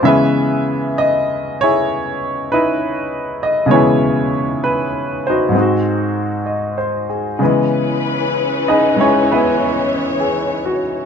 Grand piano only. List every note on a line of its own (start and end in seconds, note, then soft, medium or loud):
0.03 3.65 C#3 medium
0.03 3.69 E3 medium
0.03 3.66 G#3 soft
0.03 3.69 B3 soft
0.03 3.69 C#4 soft
0.03 0.92 E5 medium
0.07 1.62 G#4 medium
0.07 1.84 B4 medium
0.98 1.61 D#5 medium
1.61 2.52 E4 medium
1.61 3.39 G#4 medium
1.61 2.53 C#5 medium
2.52 4.30 D#4 soft
2.52 3.72 E4 soft
2.52 3.38 B4 medium
3.43 3.68 D#5 medium
3.66 5.53 B2 soft
3.66 5.52 C#3 soft
3.66 5.50 G#3 soft
3.66 5.54 D#5 soft
3.71 5.55 E3 medium
3.71 5.52 E4 medium
3.71 5.52 G#4 medium
3.71 4.65 C#5 medium
4.64 5.22 B4 medium
5.27 5.55 D#4 soft
5.27 5.58 F#4 soft
5.27 6.76 C5 medium
5.49 7.37 G#2 soft
5.49 7.38 G#3 soft
5.55 7.40 C4 soft
5.55 7.42 D#4 soft
5.60 7.43 F#4 medium
6.46 7.06 D#5 soft
6.78 7.26 C5 soft
7.09 7.58 G#4 soft
7.39 11.05 C#3 soft
7.39 8.95 G#3 soft
7.39 9.31 B3 soft
7.39 8.67 D#5 soft
7.44 11.05 E3 medium
8.68 8.96 D#4 medium
8.68 8.97 G#4 medium
8.68 8.97 B4 medium
8.68 8.96 D#5 medium
8.96 11.05 G#3 soft
8.96 8.99 C#4 soft
8.96 9.31 E4 soft
9.00 9.28 C#4 soft
9.00 9.27 G#4 soft
9.00 9.28 C#5 medium
9.32 10.81 B3 soft
9.32 10.81 E4 soft
9.32 10.19 G#4 soft
9.32 9.72 B4 medium
9.73 10.38 B4 soft
10.20 10.93 G#4 soft
10.65 11.05 F#4 soft